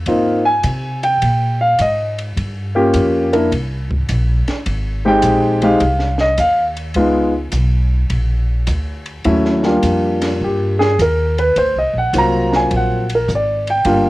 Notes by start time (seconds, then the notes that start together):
0.06 G#2 A#3 C4 D#4 F4, kick, ride
0.45 G#5
0.63 C3, kick, hi-hat pedal, ride
1.03 G5, ride
1.22 A#2, kick, ride
1.61 F5
1.78 G#2 D#5, kick, hi-hat pedal, ride
2.18 ride
2.36 G2, kick, ride
2.75 A#3 C#4 F4 G4
2.94 F2, kick, hi-hat pedal, ride
3.33 A#3 D4 E4 A#4, ride
3.51 C2, kick, ride
3.91 kick
4.09 A#1, kick, hi-hat pedal, ride
4.48 muted upright bass stroke, snare, ride
4.66 G#1, kick, ride
5.05 G#3 C4 D#4 G4 G5
5.22 A#1, kick, hi-hat pedal, ride
5.62 G#3 C4 D#4 G4 F5, ride
5.80 C2, kick, ride
5.99 snare
6.18 D#5, snare
6.38 D#2 F5, kick, hi-hat pedal, ride
6.77 ride
6.94 C#2 G#3 B3 D#4 F4, kick, ride
7.52 B1, kick, hi-hat pedal, ride
8.10 A#1, kick, ride
8.67 D2, kick, hi-hat pedal, ride
9.06 ride
9.24 D#2 F#3 A3 C#4 E4, kick, ride
9.45 snare
9.63 G3 A#3 D4 F4, snare
9.83 F2, kick, hi-hat pedal, ride
10.22 snare, ride
10.41 G2 G4, kick
10.79 G#4, snare
10.99 D#2 A#4, kick, hi-hat pedal, ride
11.38 B4, ride
11.56 D2 C5, kick, ride
11.75 C2 D#5
11.93 A#1
11.98 F#5
12.13 C2 F#3 A#3 C4 F4, kick, hi-hat pedal, ride
12.18 A#5
12.53 G#5, snare
12.71 A#1, kick, ride
12.76 F#5
13.10 ride
13.15 A#4
13.28 G#1, kick, hi-hat pedal
13.35 D5
13.67 G5, ride
13.85 G1 G3 A#3 D4 F4, kick, ride